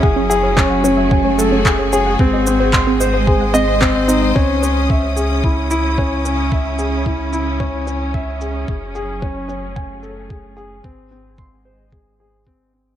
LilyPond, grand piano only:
\new Staff \with { instrumentName = "Grand piano" } { \time 4/4 \key cis \minor \tempo 4 = 111 gis'8 gis'8 cis'8 cis'8 gis''8 a'8 gis'8 gis'8 | bis8 bis8 bis''8 bis'8 gis'8 dis''8 bis8 dis'8 | cis'8 cis'8 e''8 gis'8 e'8 e'8 cis'8 cis'8 | e''8 gis'8 e'8 e'8 cis'8 cis'8 e''8 gis'8 |
gis'8 gis'8 cis'8 cis'8 gis''8 a'8 gis'8 gis'8 | bis8 bis8 bis''8 bis'8 gis'8 gis'8 bis8 bis8 | }